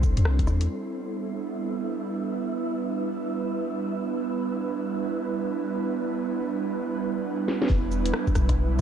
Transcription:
Already playing: 808-style bass C2, analog synth pad G3 C4 D4 E4 A4, synth texture C4 C5
0.03 kick, cabasa
0.17 808-style bass E2, closed hi-hat
0.25 808-style bass C2, cross-stick
0.39 kick, closed hi-hat
0.47 808-style bass E2, cross-stick, cabasa
0.61 closed hi-hat
0.69 synth texture E4 E5
0.81 analog synth pad B3
1.06 analog synth pad D4
1.54 analog synth pad B4
7.48 snare
7.62 snare
7.70 808-style bass E1, synth texture E4 E5, kick
7.92 cabasa
8.06 closed hi-hat
8.14 cross-stick
8.27 kick, cabasa
8.35 808-style bass B1, cross-stick, closed hi-hat, cabasa
8.49 kick, cross-stick, closed hi-hat

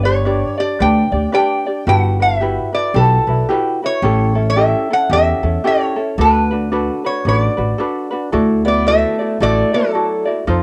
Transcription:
Already playing: upright bass G1
0.03 ukulele D4 G4 D5, resonator guitar played with a steel bar C#5
0.25 ukulele D4 G4 B4 D5
0.58 ukulele D4 G4 D5, resonator guitar played with a steel bar D5
0.80 upright bass D2, ukulele D4 G4 B4 D5, resonator guitar played with a steel bar G5
1.12 upright bass D2, ukulele D4 G4 D5
1.32 ukulele D4 G4 B4 D5, resonator guitar played with a steel bar G5
1.66 ukulele D4 G4 D5
1.87 upright bass G1, ukulele E4 F#4 G4 B4, resonator guitar played with a steel bar F#5
2.20 ukulele E4 F#4 B4, resonator guitar played with a steel bar E5
2.40 ukulele E4 F#4 G4 B4
2.73 ukulele E4 F#4 B4, resonator guitar played with a steel bar D5
2.94 upright bass B1, ukulele E4 F#4 G4 B4, resonator guitar played with a steel bar A4
3.27 upright bass B1, ukulele E4 F#4 B4
3.49 ukulele E4 F#4 G4 B4
3.83 ukulele E4 F#4 B4, resonator guitar played with a steel bar C#5
4.02 upright bass A1, ukulele C#4 E4 G4 A4
4.35 ukulele C#4 E4 A4
4.50 resonator guitar played with a steel bar E5
4.56 ukulele C#4 E4 G4 A4
4.90 ukulele C#4 E4 A4, resonator guitar played with a steel bar F#5
5.09 upright bass E2, ukulele C#4 E4 G4 A4, resonator guitar played with a steel bar E5
5.43 upright bass E2, ukulele C#4 E4 A4
5.64 ukulele C#4 E4 G4 A4, resonator guitar played with a steel bar C#5
5.96 ukulele C#4 E4 A4
6.18 upright bass D2, ukulele D4 F#4 A4 B4, resonator guitar played with a steel bar B4
6.51 ukulele D4 F#4 B4
6.72 ukulele D4 F#4 A4 B4
7.04 ukulele D4 F#4 B4, resonator guitar played with a steel bar C#5
7.25 upright bass A1, ukulele D4 F#4 A4 B4, resonator guitar played with a steel bar C#5
7.39 resonator guitar played with a steel bar D5
7.57 upright bass A1, ukulele D4 F#4 B4
7.78 ukulele D4 F#4 A4 B4
8.11 ukulele D4 F#4 B4
8.32 upright bass D2, ukulele E4 F#4 A4 D5
8.65 steel-string acoustic guitar B3, ukulele E4 F#4 D5, resonator guitar played with a steel bar D5
8.86 steel-string acoustic guitar A3, ukulele E4 F#4 A4 D5, resonator guitar played with a steel bar E5
9.19 ukulele E4 F#4 D5
9.40 upright bass A1, steel-string acoustic guitar A3, ukulele E4 F#4 A4 D5, resonator guitar played with a steel bar D5
9.73 steel-string acoustic guitar F#3, ukulele E4 F#4 D5, resonator guitar played with a steel bar A4
9.93 ukulele E4 F#4 A4 D5
10.25 ukulele E4 F#4 D5
10.47 upright bass F2, ukulele D#4 F4 A4 C5

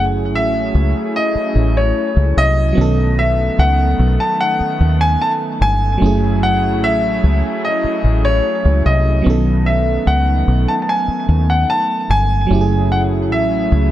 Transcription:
Already playing: fingered electric bass F#1, fm electric piano F#3 A3 C#4 E4 G#4, analog synth pad F#3 A3 C#4 E4 G#4
0.34 fingered electric bass A1, grand piano E5
0.75 fingered electric bass C#2
1.16 grand piano D#5
1.35 muted fingered electric bass stroke
1.55 fingered electric bass A1
1.77 grand piano C#5
2.16 fingered electric bass C#2
2.37 fingered electric bass C2, grand piano D#5
2.73 fm electric piano F#3 B3
2.77 fingered electric bass B1, analog synth pad D#3 A3 B3, fm electric piano D#3 C#4
2.81 fm electric piano A4
3.19 grand piano E5
3.59 fingered electric bass C#2, grand piano F#5
3.99 fingered electric bass B1
4.20 grand piano A5
4.41 grand piano F#5
4.60 muted fingered electric bass stroke
4.80 fingered electric bass D#2
5.01 grand piano G#5
5.22 grand piano A5
5.61 fingered electric bass G1, grand piano G#5
5.98 fm electric piano F#3 A3
6.02 fingered electric bass F#1, analog synth pad F#3 A3 C#4 E4 G#4, fm electric piano C#4 E4
6.06 fm electric piano G#4
6.43 grand piano F#5
6.83 fingered electric bass A1, grand piano E5
7.24 fingered electric bass C#2
7.65 grand piano D#5
7.84 muted fingered electric bass stroke
8.04 fingered electric bass A1
8.25 grand piano C#5
8.65 fingered electric bass C#2
8.86 fingered electric bass C2, grand piano D#5
9.22 fm electric piano F#3 B3 C#4
9.26 fingered electric bass B1, analog synth pad D#3 A3 B3, fm electric piano D#3 A4
9.66 grand piano E5
10.07 fingered electric bass C#2, grand piano F#5
10.48 fingered electric bass B1
10.68 grand piano A5
10.82 grand piano A5
10.89 grand piano G#5
11.08 muted fingered electric bass stroke
11.29 fingered electric bass D#2
11.50 grand piano F#5
11.70 grand piano A5
12.10 fingered electric bass G1, grand piano G#5
12.47 fm electric piano F#3 A3 C#4
12.51 fingered electric bass F#1, analog synth pad F#3 A3 C#4 E4 G#4, fm electric piano E4 G4
12.61 fm electric piano G#4
12.92 grand piano F#5
13.32 fingered electric bass A1, grand piano E5
13.72 fingered electric bass C#2

